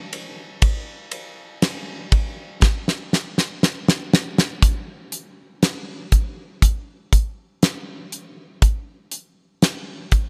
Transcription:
0.13 ride medium
0.62 kick loud
0.62 ride medium
1.11 ride medium
1.62 snare loud
1.62 ride medium
2.12 kick medium
2.12 ride medium
2.62 kick loud
2.62 snare medium
2.88 snare medium
3.13 snare medium
3.38 snare medium
3.63 snare medium
3.88 snare medium
4.13 snare loud
4.38 snare medium
4.62 kick medium
4.62 closed hi-hat medium
5.12 closed hi-hat medium
5.63 snare loud
5.63 closed hi-hat medium
6.12 kick medium
6.12 closed hi-hat medium
6.62 kick medium
6.62 closed hi-hat medium
7.13 kick medium
7.13 closed hi-hat medium
7.63 snare medium
7.63 closed hi-hat medium
8.12 closed hi-hat medium
8.62 kick medium
8.62 closed hi-hat medium
9.12 closed hi-hat medium
9.62 snare medium
9.62 closed hi-hat medium
10.12 kick medium
10.12 closed hi-hat soft

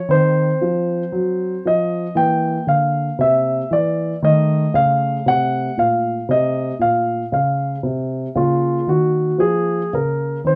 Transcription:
0.09 0.49 D#3 soft
0.09 2.12 C4 soft
0.09 1.65 C5 medium
0.61 1.02 F3 soft
1.12 1.53 F#3 soft
1.65 2.06 F3 soft
1.65 2.17 D#5 medium
2.15 2.56 E3 medium
2.15 4.18 A#3 soft
2.15 2.67 G5 medium
2.67 3.08 D3 soft
2.67 3.19 F5 medium
3.19 3.60 C3 soft
3.19 3.71 E5 medium
3.71 4.12 E3 soft
3.71 4.16 D5 medium
4.22 4.64 D#3 soft
4.22 8.32 A3 soft
4.22 4.75 D#5 medium
4.74 5.15 C#3 soft
4.74 5.26 F5 medium
5.26 5.67 C3 soft
5.26 5.78 F#5 medium
5.77 6.18 A#2 soft
5.77 6.29 F5 medium
6.29 6.70 C3 soft
6.29 6.74 D#5 medium
6.79 7.21 A#2 soft
6.79 7.25 F5 medium
7.32 7.74 C#3 soft
7.32 7.77 F5 medium
7.83 8.25 C3 soft
8.35 8.77 C#3 soft
8.35 10.41 A#3 soft
8.35 8.88 F4 medium
8.87 9.29 D#3 soft
8.87 9.41 F#4 medium
9.38 9.81 F3 soft
9.38 9.92 G#4 medium
9.93 10.35 C#3 soft
9.93 10.38 A#4 medium
10.44 10.55 D#3 soft
10.44 10.55 C4 soft
10.44 10.55 C5 medium

